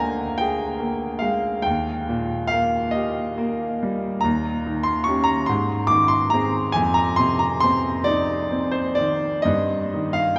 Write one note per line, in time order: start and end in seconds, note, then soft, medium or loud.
0.00 1.61 D2 medium
0.00 0.23 D3 medium
0.00 0.64 A#3 medium
0.00 0.38 G5 loud
0.00 1.68 G#5 medium
0.00 0.38 A#5 medium
0.38 1.07 G#4 medium
0.38 1.22 G5 loud
0.80 1.48 A#3 medium
1.19 1.65 G#3 medium
1.19 1.64 F5 medium
1.62 4.20 D#2 medium
1.62 2.50 G5 medium
2.09 2.77 A#2 medium
2.47 3.20 A#3 medium
2.47 2.93 F5 loud
2.91 3.64 G4 medium
2.91 3.36 D#5 medium
3.38 4.07 A#3 medium
3.83 4.25 G3 medium
4.21 5.45 D#2 medium
4.21 4.85 A#5 loud
4.66 5.33 D#3 medium
4.83 5.06 C6 loud
5.04 5.45 C#4 medium
5.04 5.45 G4 medium
5.04 5.27 C#6 loud
5.24 5.47 A#5 loud
5.46 6.72 G#2 medium
5.46 5.90 C6 loud
5.87 6.59 D#3 medium
5.87 6.10 D6 loud
6.08 6.31 C6 loud
6.30 6.72 C4 medium
6.30 6.72 G#4 medium
6.30 6.75 A#5 loud
6.72 9.40 F2 medium
6.72 6.96 G#5 loud
6.94 7.18 A#5 loud
7.16 7.90 C3 medium
7.16 7.40 C6 loud
7.39 7.63 A#5 loud
7.60 8.34 C4 medium
7.60 8.06 C6 loud
8.04 8.78 D#4 medium
8.04 8.72 D5 loud
8.52 9.26 C4 medium
8.71 8.96 C5 medium
8.95 9.45 D#3 medium
8.95 9.44 D5 loud
9.42 10.39 G2 medium
9.42 10.14 D#5 medium
9.94 10.39 D#3 medium
10.13 10.37 F5 loud